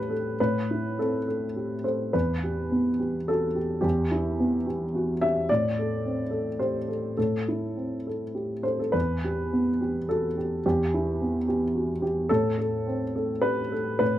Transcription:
0.00 0.35 A2 soft
0.00 0.41 C4 soft
0.00 0.11 G4 soft
0.00 0.10 A4 medium
0.00 0.39 B4 medium
0.10 0.56 A4 soft
0.40 2.11 A2 soft
0.40 0.98 B4 medium
0.71 1.16 E4 soft
0.99 1.45 C4 soft
0.99 1.26 A4 medium
1.28 1.74 A4 soft
1.56 1.85 G4 soft
1.84 2.14 A4 soft
1.84 2.14 C5 medium
2.13 3.80 E2 soft
2.13 3.28 B4 medium
2.43 2.89 G4 soft
2.72 3.17 B3 soft
3.00 3.45 G4 soft
3.28 3.57 F#4 soft
3.28 3.84 A4 medium
3.55 3.79 G4 soft
3.81 5.44 E2 soft
3.81 4.65 G4 medium
4.12 4.55 E4 soft
4.40 4.83 B3 soft
4.67 5.11 G4 soft
4.95 5.22 F#4 soft
5.21 5.49 G4 soft
5.21 5.49 E5 medium
5.49 7.14 A2 soft
5.49 6.59 D5 medium
5.79 6.21 A4 soft
6.05 6.48 C4 soft
6.31 6.76 A4 soft
6.59 6.88 G4 soft
6.59 7.17 C5 medium
6.88 7.16 A4 soft
7.17 8.91 A2 soft
7.17 8.05 A4 soft
7.48 7.95 E4 soft
7.76 8.23 C4 soft
8.07 8.53 A4 soft
8.35 8.64 G4 soft
8.63 8.78 A4 soft
8.63 8.79 C5 medium
8.79 8.94 A4 soft
8.92 10.60 E2 soft
8.92 10.07 B4 medium
9.24 9.70 G4 soft
9.53 9.97 B3 soft
9.81 10.25 G4 soft
10.09 10.37 F#4 soft
10.09 10.65 A4 medium
10.38 10.64 G4 soft
10.66 12.26 E2 soft
10.66 11.47 G4 medium
10.94 11.37 E4 soft
11.22 11.64 B3 soft
11.48 11.91 G4 soft
11.75 12.02 F#4 soft
12.02 12.29 G4 soft
12.29 13.98 A2 soft
12.29 12.57 A4 medium
12.58 13.02 A4 soft
12.87 13.31 C4 soft
13.16 13.61 A4 soft
13.41 13.71 G4 soft
13.41 13.97 B4 medium
13.72 14.19 A4 soft
13.99 14.19 A2 soft
13.99 14.19 B4 medium

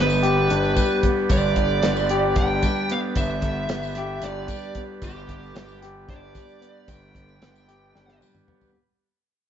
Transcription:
0.00 0.48 G1 medium
0.00 1.30 G2 medium
0.00 1.04 D3 medium
0.00 0.76 G3 medium
0.00 8.71 G3 medium
0.00 1.04 B3 medium
0.00 8.71 B3 medium
0.00 0.50 D4 medium
0.00 8.71 D4 medium
0.00 0.23 G4 medium
0.00 8.71 B4 medium
0.00 1.01 B4 medium
0.10 tambourine medium
0.23 2.10 G4 medium
0.23 closed hi-hat medium
0.50 0.76 G1 medium
0.50 2.37 D4 medium
0.50 closed hi-hat medium
0.63 tambourine soft
0.76 2.64 G3 medium
0.76 kick medium
0.76 closed hi-hat medium
0.76 tambourine medium
1.03 1.83 B3 medium
1.03 kick medium
1.03 closed hi-hat medium
1.29 1.81 G1 loud
1.29 3.17 G2 medium
1.29 2.40 D5 medium
1.29 kick loud
1.29 closed hi-hat medium
1.29 tambourine medium
1.56 2.90 D3 medium
1.56 kick medium
1.56 closed hi-hat medium
1.70 tambourine soft
1.83 2.35 G1 medium
1.83 2.91 B3 medium
1.83 snare loud
1.83 closed hi-hat medium
1.83 tambourine soft
1.97 tambourine medium
2.09 3.97 G4 medium
2.09 closed hi-hat medium
2.36 2.62 G1 medium
2.36 4.23 D4 medium
2.36 2.91 G5 loud
2.36 kick loud
2.36 snare soft
2.36 closed hi-hat medium
2.63 4.49 G3 medium
2.63 kick medium
2.63 snare soft
2.63 closed hi-hat medium
2.63 tambourine medium
2.76 tambourine soft
2.90 3.70 B3 medium
2.90 2.99 F5 medium
2.90 closed hi-hat medium
3.15 3.67 G1 loud
3.15 5.03 G2 medium
3.15 4.25 E5 medium
3.15 kick medium
3.15 closed hi-hat medium
3.15 tambourine medium
3.42 4.76 D3 medium
3.42 kick medium
3.42 snare soft
3.42 closed hi-hat medium
3.56 tambourine soft
3.69 4.20 G1 medium
3.69 4.77 B3 medium
3.69 snare loud
3.69 closed hi-hat medium
3.69 tambourine soft
3.83 tambourine medium
3.95 5.81 G4 medium
3.95 snare soft
3.95 closed hi-hat medium
4.22 4.47 G1 medium
4.22 6.08 D4 medium
4.22 4.80 D5 medium
4.22 closed hi-hat medium
4.48 6.35 G3 medium
4.48 kick medium
4.48 closed hi-hat medium
4.48 tambourine medium
4.63 tambourine soft
4.75 5.55 B3 medium
4.75 kick medium
4.75 closed hi-hat medium
5.02 5.53 G1 loud
5.02 6.88 G2 medium
5.02 5.79 G4 medium
5.02 kick loud
5.02 closed hi-hat medium
5.02 tambourine medium
5.29 6.62 D3 medium
5.29 kick medium
5.29 closed hi-hat medium
5.43 tambourine soft
5.55 6.06 G1 medium
5.55 6.61 B3 medium
5.55 snare loud
5.55 closed hi-hat medium
5.68 tambourine medium
5.82 7.15 G4 medium
5.82 snare soft
5.82 closed hi-hat medium
6.09 6.34 G1 medium
6.09 7.42 D4 medium
6.09 6.91 D5 medium
6.09 kick loud
6.09 closed hi-hat medium
6.35 7.68 G3 medium
6.35 kick medium
6.35 snare soft
6.35 closed hi-hat medium
6.35 tambourine medium
6.49 tambourine soft
6.61 7.41 B3 medium
6.61 closed hi-hat medium
6.88 7.39 G1 loud
6.88 8.21 G2 medium
6.88 8.18 G5 medium
6.88 kick loud
6.88 closed hi-hat medium
6.88 tambourine medium
7.15 8.49 D3 medium
7.15 kick medium
7.15 closed hi-hat medium
7.29 tambourine soft
7.42 7.92 G1 medium
7.42 8.47 B3 medium
7.42 snare loud
7.42 closed hi-hat medium
7.56 tambourine medium
7.68 8.75 G4 medium
7.68 snare soft
7.68 closed hi-hat medium
7.95 8.20 G1 medium
7.95 8.75 D4 medium
7.95 snare medium
8.09 snare medium
8.21 8.75 G3 medium
8.21 high tom medium
8.21 tambourine loud
8.35 mid tom medium
8.48 8.75 B3 medium
8.48 mid tom medium
8.61 floor tom medium
8.61 tambourine soft

